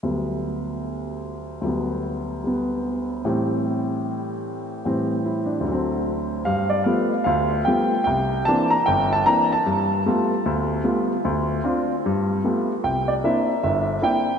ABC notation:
X:1
M:4/4
L:1/16
Q:"Swing" 1/4=150
K:G
V:1 name="Grand piano"
z16 | z16 | z16 | z4 E2 D3 z6 z |
[K:C] f2 d2 f4 f4 g4 | g4 a2 _b2 g2 a2 b2 a2- | a8- a2 z6 | z16 |
g2 d2 e4 e4 g4 |]
V:2 name="Grand piano"
[D,,F,G,B,]16 | [D,,F,G,B,]8 [G,B,]8 | [A,,E,G,C]16 | [A,,E,G,C]8 [D,,D,F,C]8 |
[K:C] G,,4 [F,G,A,B,]2 z2 D,,4 [F,G,A,B,]2 z2 | C,,4 [E,_B,CD]2 z2 G,,,4 [E,B,CD]2 z2 | G,,4 [G,A,B,F]2 z2 D,,4 [G,A,B,F]2 z2 | D,,4 [CDF]2 z2 G,,4 [A,B,FG]2 z2 |
C,,4 [_B,CDE]2 z2 G,,,4 [B,CDE]2 z2 |]